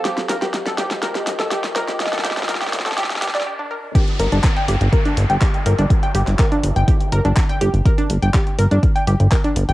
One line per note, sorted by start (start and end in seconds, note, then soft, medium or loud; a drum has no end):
0.00 0.80 G4 medium
0.00 1.50 C5 medium
0.00 1.33 F5 medium
0.00 riser medium
0.05 3.46 F4 medium
0.05 0.11 G4 loud
0.05 snare medium
0.05 closed hi-hat medium
0.18 3.46 D#5 medium
0.18 snare medium
0.18 closed hi-hat soft
0.29 0.37 G1 medium
0.29 0.33 A#4 medium
0.29 snare medium
0.29 open hi-hat loud
0.42 0.49 G1 medium
0.42 0.48 G4 medium
0.42 3.46 A#4 medium
0.42 snare medium
0.42 closed hi-hat soft
0.54 snare medium
0.54 closed hi-hat medium
0.66 0.75 A4 medium
0.66 snare medium
0.66 closed hi-hat soft
0.78 0.86 G1 medium
0.78 0.84 G4 loud
0.78 snare medium
0.78 open hi-hat loud
0.91 0.98 G1 medium
0.91 snare medium
0.91 closed hi-hat medium
1.02 1.06 A#4 medium
1.02 snare medium
1.02 closed hi-hat medium
1.15 1.21 G4 medium
1.15 snare medium
1.15 closed hi-hat soft
1.27 1.35 G1 medium
1.27 snare loud
1.27 open hi-hat loud
1.39 1.47 G1 medium
1.39 1.48 A4 medium
1.39 snare medium
1.39 closed hi-hat soft
1.51 1.58 G4 loud
1.51 snare loud
1.51 closed hi-hat medium
1.64 snare medium
1.64 closed hi-hat soft
1.76 1.84 G1 medium
1.76 1.79 A#4 medium
1.76 snare loud
1.76 open hi-hat loud
1.88 1.96 G1 medium
1.88 1.94 G4 medium
1.88 snare medium
1.88 closed hi-hat soft
2.00 snare loud
2.00 closed hi-hat medium
2.06 snare medium
2.13 2.22 A4 medium
2.13 snare medium
2.13 closed hi-hat soft
2.19 snare medium
2.24 2.32 G1 medium
2.24 2.31 G4 loud
2.24 snare loud
2.24 open hi-hat loud
2.31 snare medium
2.37 2.44 G1 medium
2.37 snare loud
2.37 closed hi-hat medium
2.43 snare medium
2.49 2.53 A#4 medium
2.49 snare loud
2.49 closed hi-hat medium
2.55 snare medium
2.62 2.67 G4 medium
2.62 snare medium
2.62 closed hi-hat soft
2.67 snare medium
2.73 2.81 G1 medium
2.73 snare loud
2.73 open hi-hat loud
2.80 snare loud
2.86 2.93 G1 medium
2.86 2.95 A4 medium
2.86 snare loud
2.86 closed hi-hat soft
2.92 snare loud
2.98 3.04 G4 loud
2.98 snare loud
2.98 closed hi-hat medium
3.04 snare loud
3.10 snare loud
3.10 closed hi-hat soft
3.16 snare medium
3.22 3.30 G1 medium
3.22 3.28 G4 medium
3.22 snare loud
3.22 open hi-hat loud
3.28 snare medium
3.35 3.42 G1 medium
3.35 3.44 D5 medium
3.35 snare loud
3.35 closed hi-hat soft
3.41 snare medium
3.46 3.53 G4 medium
3.59 3.65 D4 medium
3.71 3.75 A#4 medium
3.95 4.02 G4 medium
3.95 kick loud
3.95 closed hi-hat medium
3.95 downlifter medium
4.08 closed hi-hat soft
4.20 4.28 G1 medium
4.20 4.26 A#4 medium
4.20 open hi-hat loud
4.32 4.40 G1 medium
4.32 4.36 D4 medium
4.32 closed hi-hat soft
4.44 kick loud
4.44 clap loud
4.44 closed hi-hat medium
4.57 4.65 G5 medium
4.57 closed hi-hat soft
4.68 4.76 G1 medium
4.68 4.75 G4 medium
4.68 open hi-hat loud
4.81 4.88 G1 medium
4.81 closed hi-hat soft
4.93 4.99 A#4 medium
4.93 kick loud
4.93 closed hi-hat medium
5.05 5.09 D4 medium
5.05 closed hi-hat soft
5.17 5.25 G1 medium
5.17 open hi-hat loud
5.30 5.37 G1 medium
5.30 5.39 G5 medium
5.30 closed hi-hat soft
5.42 5.48 G4 medium
5.42 kick loud
5.42 clap loud
5.42 closed hi-hat medium
5.54 closed hi-hat soft
5.66 5.74 G1 medium
5.66 5.72 A#4 medium
5.66 open hi-hat loud
5.79 5.86 G1 medium
5.79 5.82 D4 medium
5.79 closed hi-hat soft
5.90 kick loud
5.90 closed hi-hat medium
6.03 6.12 G5 medium
6.03 closed hi-hat soft
6.15 6.23 G1 medium
6.15 6.21 G4 medium
6.15 open hi-hat loud
6.27 6.35 G1 medium
6.27 clap soft
6.27 closed hi-hat soft
6.39 6.45 A#4 medium
6.39 kick loud
6.39 clap loud
6.39 closed hi-hat medium
6.52 6.55 D4 medium
6.52 closed hi-hat soft
6.63 6.71 G1 medium
6.63 open hi-hat loud
6.76 6.83 G1 medium
6.76 6.85 G5 medium
6.76 closed hi-hat soft
6.88 6.94 G4 medium
6.88 kick loud
6.88 closed hi-hat medium
7.01 closed hi-hat soft
7.12 7.20 G1 medium
7.12 7.19 A#4 medium
7.12 open hi-hat loud
7.25 7.32 G1 medium
7.25 7.29 D4 medium
7.25 closed hi-hat soft
7.37 kick loud
7.37 clap loud
7.37 closed hi-hat medium
7.49 7.58 G5 medium
7.49 closed hi-hat soft
7.61 7.69 G1 loud
7.61 7.67 G4 medium
7.61 open hi-hat loud
7.74 7.81 G1 medium
7.74 closed hi-hat soft
7.85 7.92 A#4 medium
7.85 kick loud
7.85 closed hi-hat medium
7.98 8.02 D4 medium
7.98 closed hi-hat soft
8.10 8.18 G1 medium
8.10 open hi-hat loud
8.22 8.30 G1 medium
8.22 8.31 G5 medium
8.22 closed hi-hat soft
8.34 8.41 G4 medium
8.34 kick loud
8.34 clap loud
8.34 closed hi-hat medium
8.47 closed hi-hat soft
8.59 8.66 G1 medium
8.59 8.65 A#4 medium
8.59 open hi-hat loud
8.71 8.79 G1 medium
8.71 8.75 D4 medium
8.71 closed hi-hat soft
8.83 kick loud
8.83 closed hi-hat medium
8.96 9.04 G5 medium
8.96 closed hi-hat soft
9.07 9.15 G1 loud
9.07 9.14 G4 medium
9.07 open hi-hat loud
9.20 9.27 G1 medium
9.20 closed hi-hat soft
9.32 9.38 A#4 medium
9.32 kick loud
9.32 clap loud
9.32 closed hi-hat medium
9.44 9.48 D4 medium
9.44 closed hi-hat soft
9.56 9.64 G1 medium
9.56 open hi-hat loud
9.69 9.73 G1 medium
9.69 9.73 G5 medium
9.69 closed hi-hat soft